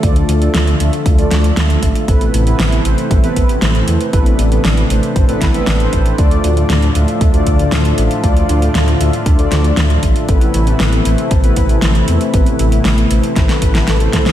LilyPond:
<<
  \new Staff \with { instrumentName = "Analog synth lead" } { \time 4/4 \key a \minor \tempo 4 = 117 r1 | r1 | r1 | r1 |
r1 | r1 | r2. a'4 | }
  \new Staff \with { instrumentName = "Analog polysynth" } { \time 4/4 \key a \minor <a d' f' a' d''>8. <a d' f' a' d''>8. <a d' f' a' e''>8. <a d' f' a' d''>8. <a d' f' a' e''>4 | <b c' e' a' b'>8. <b c' e' a' b'>8. <c' e' a' b' c''>8. <b c' e' a' b'>8. <c' e' a' b' c''>4 | <b c' e' a' b'>8. <b c' e' a' b'>8. <c' e' a' b' c''>8. <b c' e' a' b'>8 <b c' e' a' b'>8 <c' e' a' b' c''>8. | <a d' f' a' d''>8. <a d' f' a' d''>8. <a d' f' a' e''>8. <a d' f' a' d''>8. <a d' f' a' e''>4 |
<a d' f' a' d''>8. <a d' f' a' d''>8. <a d' f' a' e''>8. <a d' f' a' d''>8. <a f' a'>4 | <b c' e' a' b'>8. <b c' e' a' b'>8. <c' e' a' b' c''>8. <b c' e' a' b'>8. <c' e' a' b' c''>4 | <b c' e' a' b'>8. <b c' e' a' b'>8. <c' e' a' b' c''>8. <b c' e' a' b'>8 <b c' e' a' b'>8 <c' e' a' b' c''>8. | }
  \new Staff \with { instrumentName = "Analog synth pad" } { \clef bass \time 4/4 \key a \minor << { <f' a'>1 | e'1 | d'1 | f'1~ |
f'1 | e'1~ | e'1 | } \\ { <d f a>1 | <c e a>1~ | <c e a>1 | <a, d f>1~ |
<a, d f>1 | <c e a>1~ | <c e a>1 | } >> }
  \new Staff \with { instrumentName = "Detuned saw bass" } { \clef bass \time 4/4 \key a \minor d,8 d,8 d,8 d,8 d,8 d,8 d,8 a,,8 | a,,8 a,,8 a,,8 a,,8 a,,8 a,,8 a,,8 e,8 | a,,8 a,,8 a,,8 a,,8 a,,8 a,,8 a,,8 a,,8 | d,8 d,8 d,8 d,8 d,8 d,8 d,8 a,,8 |
d,8 d,8 d,8 d,8 d,8 d,8 d,8 a,,8 | a,,8 a,,8 a,,8 a,,8 a,,8 a,,8 a,,8 e,8 | a,,8 a,,8 a,,8 a,,8 a,,8 a,,8 a,,8 a,8 | }
  \new DrumStaff \with { instrumentName = "Drums" } \drummode { \time 4/4 <hh bd>16 hh16 hh16 hh16 <hh sn>16 hh16 hh16 hh16 <hh bd>16 hh16 <hh sn>16 hh16 <hh sn>16 hh16 <hh bd>16 hh16 | <hh bd>16 hh16 hh16 hh16 <hh sn>16 hh16 hh16 hh16 <hh bd>16 hh16 <hh bd>16 hh16 <hh sn>16 hh16 hh16 hh16 | <hh bd>16 hh16 hh16 hh16 <hh sn>16 hh16 hh16 hh16 <hh bd>16 hh16 <hh bd sn>16 hh16 <hh sn>16 hh16 <hh bd>16 hh16 | <hh bd>16 hh16 hh16 hh16 <hh sn>16 hh16 hh16 hh16 <hh bd>16 hh16 <hh bd>16 hh16 <hh sn>16 hh16 hh16 hh16 |
<hh bd>16 hh16 hh16 hh16 <hh sn>16 hh16 hh16 hh16 <hh bd>16 hh16 <hh sn>16 hh16 <hh sn>16 hh16 <hh bd>16 hh16 | <hh bd>16 hh16 hh16 hh16 <hh sn>16 hh16 hh16 hh16 <hh bd>16 hh16 <hh bd>16 hh16 <hh sn>16 hh16 hh16 hh16 | <hh bd>16 hh16 hh16 hh16 <hh sn>16 hh16 hh16 hh16 <hh bd sn>16 <hh sn>16 <hh bd>16 <hh sn>16 <hh sn>16 hh16 <hh bd sn>16 <hh sn>16 | }
>>